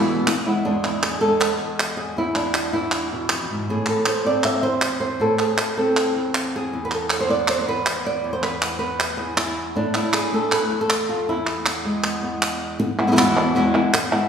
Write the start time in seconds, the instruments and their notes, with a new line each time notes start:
Already playing: nylon-string guitar E2 B2 E3 G#3 B3 E4
0.27 muted nylon-string guitar stroke, clap
0.46 nylon-string guitar E3 G#3 B3 E4
0.65 nylon-string guitar E2 G#3 B3 D4
0.84 nylon-string guitar E4, clap
1.03 nylon-string guitar G#4, clap
1.21 nylon-string guitar G#3 A4
1.40 nylon-string guitar B4, clap
1.58 nylon-string guitar E2 G#4
1.80 clap
1.97 nylon-string guitar G#4
2.17 nylon-string guitar E2 E4
2.35 nylon-string guitar D4, clap
2.54 nylon-string guitar E4, clap
2.73 nylon-string guitar E3 E4
2.92 clap
3.12 nylon-string guitar B2
3.29 nylon-string guitar F2, clap
3.50 nylon-string guitar G#2
3.69 nylon-string guitar A2 G#4
3.86 nylon-string guitar A4, clap
4.06 nylon-string guitar C5, clap
4.25 nylon-string guitar C4 D5
4.44 nylon-string guitar E5, clap
4.62 nylon-string guitar E2 C5
4.82 clap
5.00 nylon-string guitar C5
5.20 nylon-string guitar A2 A4
5.39 nylon-string guitar G#4, clap
5.58 nylon-string guitar A4, clap
5.77 nylon-string guitar C4 A4
5.97 clap
6.16 nylon-string guitar E2
6.35 clap
6.56 nylon-string guitar G#4
6.73 nylon-string guitar E2
6.85 nylon-string guitar B4
6.91 nylon-string guitar A4, clap
7.10 nylon-string guitar B4, clap
7.20 nylon-string guitar C5
7.29 nylon-string guitar B3 D5
7.48 nylon-string guitar C5, clap
7.61 nylon-string guitar C5
7.68 nylon-string guitar E2 B4
7.86 clap
8.06 nylon-string guitar D5
8.24 nylon-string guitar E2
8.33 nylon-string guitar C5
8.43 nylon-string guitar B4, clap
8.62 clap
8.79 nylon-string guitar B3 B4
9.00 clap
9.17 nylon-string guitar E2 G#4
9.37 nylon-string guitar E4, clap
9.76 nylon-string guitar A2 D4
9.94 nylon-string guitar E4, clap
10.13 nylon-string guitar G#4, clap
10.33 nylon-string guitar A3 A4
10.52 nylon-string guitar B4, clap
10.71 nylon-string guitar E2
10.81 nylon-string guitar A4
10.90 clap
11.09 nylon-string guitar F4
11.29 nylon-string guitar E2 E4
11.47 clap
11.66 nylon-string guitar B3, clap
11.85 nylon-string guitar G#3
12.04 nylon-string guitar B3, clap
12.23 nylon-string guitar E2 B3
12.42 clap
12.80 muted nylon-string guitar stroke
12.99 nylon-string guitar E3 G#3 B3 E4
13.07 nylon-string guitar B2 E3 G#3 B3 E4
13.12 nylon-string guitar B2 E3 G#3 B3 E4
13.16 nylon-string guitar E2 B2 E3 G#3 B3 E4, clap
13.37 clap
13.55 nylon-string guitar E2 B2 E3 G#3 B3 E4
13.74 nylon-string guitar E3 G#3 B3 E4, clap
13.93 muted nylon-string guitar stroke, clap
14.12 nylon-string guitar E3 G#3 B3 E4, clap